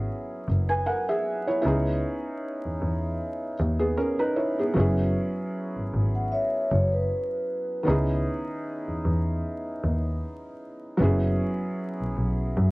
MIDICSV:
0, 0, Header, 1, 4, 480
1, 0, Start_track
1, 0, Key_signature, 4, "minor"
1, 0, Tempo, 779221
1, 1012, Time_signature, 4, 2, 24, 8
1, 7829, End_track
2, 0, Start_track
2, 0, Title_t, "Vibraphone"
2, 0, Program_c, 0, 11
2, 3790, Note_on_c, 0, 78, 69
2, 3888, Note_off_c, 0, 78, 0
2, 3893, Note_on_c, 0, 76, 83
2, 3900, Note_on_c, 0, 73, 68
2, 4121, Note_off_c, 0, 76, 0
2, 4125, Note_off_c, 0, 73, 0
2, 4134, Note_on_c, 0, 73, 82
2, 4262, Note_off_c, 0, 73, 0
2, 4268, Note_on_c, 0, 71, 71
2, 4828, Note_off_c, 0, 71, 0
2, 7829, End_track
3, 0, Start_track
3, 0, Title_t, "Felt piano"
3, 0, Program_c, 1, 0
3, 0, Control_c, 1, 64, 127
3, 0, Note_on_c, 1, 54, 71
3, 0, Note_on_c, 1, 59, 65
3, 0, Note_on_c, 1, 61, 63
3, 0, Note_on_c, 1, 64, 63
3, 0, Note_on_c, 1, 68, 73
3, 0, Note_on_c, 1, 73, 64
3, 269, Note_off_c, 1, 64, 0
3, 295, Note_off_c, 1, 68, 0
3, 426, Note_on_c, 1, 80, 57
3, 428, Note_on_c, 1, 71, 54
3, 526, Note_off_c, 1, 80, 0
3, 527, Note_off_c, 1, 71, 0
3, 531, Note_on_c, 1, 78, 65
3, 533, Note_on_c, 1, 70, 57
3, 660, Note_off_c, 1, 78, 0
3, 661, Note_off_c, 1, 70, 0
3, 668, Note_on_c, 1, 76, 64
3, 671, Note_on_c, 1, 68, 57
3, 896, Note_off_c, 1, 76, 0
3, 897, Note_off_c, 1, 68, 0
3, 906, Note_off_c, 1, 73, 0
3, 906, Note_on_c, 1, 73, 65
3, 910, Note_on_c, 1, 64, 53
3, 975, Note_off_c, 1, 54, 0
3, 980, Note_off_c, 1, 59, 0
3, 985, Note_off_c, 1, 61, 0
3, 985, Note_off_c, 1, 64, 0
3, 994, Note_on_c, 1, 64, 68
3, 1001, Note_on_c, 1, 59, 67
3, 1012, Note_on_c, 1, 61, 69
3, 1021, Control_c, 1, 64, 0
3, 1022, Note_on_c, 1, 63, 62
3, 1031, Note_on_c, 1, 68, 74
3, 1130, Control_c, 1, 64, 127
3, 1135, Note_off_c, 1, 73, 0
3, 2183, Note_off_c, 1, 59, 0
3, 2188, Note_off_c, 1, 61, 0
3, 2193, Note_off_c, 1, 63, 0
3, 2198, Note_off_c, 1, 68, 0
3, 2339, Note_on_c, 1, 68, 61
3, 2343, Note_on_c, 1, 59, 53
3, 2419, Note_off_c, 1, 64, 0
3, 2443, Note_off_c, 1, 68, 0
3, 2445, Note_off_c, 1, 59, 0
3, 2450, Note_on_c, 1, 70, 64
3, 2452, Note_on_c, 1, 61, 56
3, 2580, Note_off_c, 1, 61, 0
3, 2580, Note_off_c, 1, 70, 0
3, 2584, Note_on_c, 1, 71, 70
3, 2587, Note_on_c, 1, 63, 58
3, 2685, Note_off_c, 1, 71, 0
3, 2687, Note_off_c, 1, 63, 0
3, 2688, Note_on_c, 1, 73, 62
3, 2689, Note_on_c, 1, 64, 54
3, 2818, Note_off_c, 1, 73, 0
3, 2819, Note_off_c, 1, 64, 0
3, 2829, Note_on_c, 1, 68, 63
3, 2834, Note_on_c, 1, 59, 52
3, 2917, Note_off_c, 1, 59, 0
3, 2917, Note_on_c, 1, 54, 72
3, 2926, Note_on_c, 1, 59, 69
3, 2937, Note_on_c, 1, 61, 69
3, 2941, Control_c, 1, 64, 0
3, 2945, Note_off_c, 1, 68, 0
3, 2946, Note_on_c, 1, 64, 64
3, 2954, Note_on_c, 1, 68, 83
3, 3044, Control_c, 1, 64, 127
3, 4820, Note_off_c, 1, 54, 0
3, 4825, Note_off_c, 1, 59, 0
3, 4826, Note_on_c, 1, 51, 56
3, 4830, Note_off_c, 1, 61, 0
3, 4834, Note_off_c, 1, 64, 0
3, 4837, Note_on_c, 1, 59, 64
3, 4839, Note_off_c, 1, 68, 0
3, 4848, Note_on_c, 1, 61, 68
3, 4854, Note_on_c, 1, 63, 64
3, 4860, Control_c, 1, 64, 0
3, 4865, Note_on_c, 1, 68, 80
3, 4870, Note_on_c, 1, 64, 70
3, 4884, Note_off_c, 1, 51, 0
3, 4953, Control_c, 1, 64, 127
3, 6740, Note_off_c, 1, 59, 0
3, 6746, Note_off_c, 1, 61, 0
3, 6748, Note_off_c, 1, 63, 0
3, 6754, Note_off_c, 1, 68, 0
3, 6757, Note_off_c, 1, 64, 0
3, 6758, Note_on_c, 1, 54, 66
3, 6768, Note_on_c, 1, 59, 64
3, 6777, Note_on_c, 1, 61, 65
3, 6779, Control_c, 1, 64, 0
3, 6786, Note_on_c, 1, 64, 61
3, 6798, Note_on_c, 1, 68, 80
3, 6880, Control_c, 1, 64, 127
3, 7829, Note_off_c, 1, 54, 0
3, 7829, Note_off_c, 1, 59, 0
3, 7829, Note_off_c, 1, 61, 0
3, 7829, Note_off_c, 1, 64, 0
3, 7829, Note_off_c, 1, 68, 0
3, 7829, End_track
4, 0, Start_track
4, 0, Title_t, "Double bass"
4, 0, Program_c, 2, 43
4, 299, Note_on_c, 2, 30, 89
4, 504, Note_off_c, 2, 30, 0
4, 1017, Note_on_c, 2, 37, 97
4, 1223, Note_off_c, 2, 37, 0
4, 1633, Note_on_c, 2, 40, 49
4, 1708, Note_off_c, 2, 40, 0
4, 1736, Note_on_c, 2, 40, 82
4, 1942, Note_off_c, 2, 40, 0
4, 2217, Note_on_c, 2, 39, 81
4, 2423, Note_off_c, 2, 39, 0
4, 2936, Note_on_c, 2, 30, 113
4, 3142, Note_off_c, 2, 30, 0
4, 3552, Note_on_c, 2, 32, 48
4, 3628, Note_off_c, 2, 32, 0
4, 3659, Note_on_c, 2, 32, 92
4, 3864, Note_off_c, 2, 32, 0
4, 4138, Note_on_c, 2, 30, 90
4, 4343, Note_off_c, 2, 30, 0
4, 4857, Note_on_c, 2, 37, 99
4, 5063, Note_off_c, 2, 37, 0
4, 5471, Note_on_c, 2, 40, 48
4, 5547, Note_off_c, 2, 40, 0
4, 5575, Note_on_c, 2, 40, 85
4, 5782, Note_off_c, 2, 40, 0
4, 6058, Note_on_c, 2, 39, 82
4, 6263, Note_off_c, 2, 39, 0
4, 6779, Note_on_c, 2, 30, 106
4, 6984, Note_off_c, 2, 30, 0
4, 7395, Note_on_c, 2, 35, 47
4, 7470, Note_off_c, 2, 35, 0
4, 7497, Note_on_c, 2, 35, 83
4, 7703, Note_off_c, 2, 35, 0
4, 7741, Note_on_c, 2, 42, 107
4, 7829, Note_off_c, 2, 42, 0
4, 7829, End_track
0, 0, End_of_file